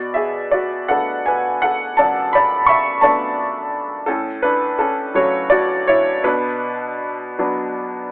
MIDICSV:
0, 0, Header, 1, 2, 480
1, 0, Start_track
1, 0, Tempo, 737101
1, 1289, Tempo, 706714
1, 1290, Time_signature, 6, 3, 24, 8
1, 3689, Tempo, 742574
1, 4649, Tempo, 777202
1, 5340, End_track
2, 0, Start_track
2, 0, Title_t, "Upright piano"
2, 0, Program_c, 0, 0
2, 0, Control_c, 0, 64, 127
2, 0, Note_on_c, 0, 47, 39
2, 0, Note_on_c, 0, 66, 34
2, 0, Note_on_c, 0, 74, 50
2, 72, Note_off_c, 0, 74, 0
2, 81, Note_off_c, 0, 66, 0
2, 90, Note_on_c, 0, 76, 45
2, 104, Note_on_c, 0, 68, 40
2, 329, Note_off_c, 0, 68, 0
2, 335, Note_on_c, 0, 74, 47
2, 347, Note_off_c, 0, 76, 0
2, 350, Note_on_c, 0, 66, 36
2, 571, Note_off_c, 0, 66, 0
2, 576, Note_on_c, 0, 78, 49
2, 578, Note_on_c, 0, 57, 29
2, 579, Note_on_c, 0, 59, 29
2, 582, Note_on_c, 0, 62, 31
2, 588, Note_off_c, 0, 74, 0
2, 593, Note_on_c, 0, 69, 42
2, 811, Note_off_c, 0, 69, 0
2, 819, Note_on_c, 0, 80, 52
2, 826, Note_off_c, 0, 78, 0
2, 834, Note_on_c, 0, 71, 41
2, 1039, Note_off_c, 0, 80, 0
2, 1047, Note_off_c, 0, 71, 0
2, 1054, Note_on_c, 0, 78, 57
2, 1068, Note_on_c, 0, 69, 46
2, 1266, Note_off_c, 0, 47, 0
2, 1279, Note_off_c, 0, 69, 0
2, 1283, Note_on_c, 0, 81, 61
2, 1292, Note_on_c, 0, 42, 42
2, 1295, Note_off_c, 0, 78, 0
2, 1295, Note_on_c, 0, 74, 47
2, 1515, Note_off_c, 0, 74, 0
2, 1526, Note_on_c, 0, 83, 65
2, 1533, Note_off_c, 0, 81, 0
2, 1542, Note_on_c, 0, 74, 50
2, 1754, Note_on_c, 0, 85, 61
2, 1756, Note_off_c, 0, 74, 0
2, 1770, Note_on_c, 0, 76, 49
2, 1771, Note_off_c, 0, 83, 0
2, 1969, Note_off_c, 0, 57, 0
2, 1970, Note_off_c, 0, 59, 0
2, 1971, Note_off_c, 0, 62, 0
2, 1985, Note_off_c, 0, 76, 0
2, 1991, Note_on_c, 0, 81, 60
2, 1998, Note_on_c, 0, 57, 34
2, 2001, Note_off_c, 0, 85, 0
2, 2002, Note_on_c, 0, 59, 31
2, 2004, Note_on_c, 0, 74, 46
2, 2005, Note_on_c, 0, 62, 36
2, 2501, Note_off_c, 0, 81, 0
2, 2507, Note_off_c, 0, 74, 0
2, 2688, Note_off_c, 0, 42, 0
2, 2692, Note_off_c, 0, 57, 0
2, 2694, Note_off_c, 0, 59, 0
2, 2696, Note_off_c, 0, 62, 0
2, 2704, Note_on_c, 0, 69, 57
2, 2714, Note_on_c, 0, 45, 52
2, 2717, Note_on_c, 0, 61, 44
2, 2724, Control_c, 0, 64, 0
2, 2846, Control_c, 0, 64, 127
2, 2936, Note_off_c, 0, 69, 0
2, 2943, Note_off_c, 0, 61, 0
2, 2949, Note_on_c, 0, 71, 63
2, 2961, Note_on_c, 0, 62, 45
2, 3187, Note_off_c, 0, 62, 0
2, 3196, Note_on_c, 0, 69, 57
2, 3205, Note_off_c, 0, 71, 0
2, 3210, Note_on_c, 0, 61, 45
2, 3425, Note_off_c, 0, 69, 0
2, 3433, Note_off_c, 0, 61, 0
2, 3438, Note_on_c, 0, 54, 40
2, 3440, Note_on_c, 0, 57, 36
2, 3443, Note_on_c, 0, 49, 39
2, 3446, Note_on_c, 0, 73, 60
2, 3453, Note_on_c, 0, 66, 49
2, 3677, Note_off_c, 0, 66, 0
2, 3679, Note_on_c, 0, 74, 60
2, 3690, Note_on_c, 0, 66, 46
2, 3697, Note_off_c, 0, 73, 0
2, 3909, Note_off_c, 0, 66, 0
2, 3922, Note_on_c, 0, 73, 68
2, 3927, Note_off_c, 0, 74, 0
2, 3930, Note_on_c, 0, 64, 57
2, 4137, Note_off_c, 0, 45, 0
2, 4138, Note_off_c, 0, 54, 0
2, 4139, Note_off_c, 0, 57, 0
2, 4141, Note_off_c, 0, 49, 0
2, 4149, Note_off_c, 0, 64, 0
2, 4159, Note_on_c, 0, 47, 59
2, 4159, Note_on_c, 0, 71, 60
2, 4168, Note_on_c, 0, 62, 46
2, 4169, Note_off_c, 0, 73, 0
2, 4170, Control_c, 0, 64, 0
2, 4295, Control_c, 0, 64, 127
2, 4883, Note_off_c, 0, 62, 0
2, 4888, Note_on_c, 0, 54, 38
2, 4889, Note_on_c, 0, 59, 39
2, 4893, Note_on_c, 0, 62, 43
2, 5104, Note_off_c, 0, 71, 0
2, 5340, Note_off_c, 0, 47, 0
2, 5340, Note_off_c, 0, 54, 0
2, 5340, Note_off_c, 0, 59, 0
2, 5340, Note_off_c, 0, 62, 0
2, 5340, End_track
0, 0, End_of_file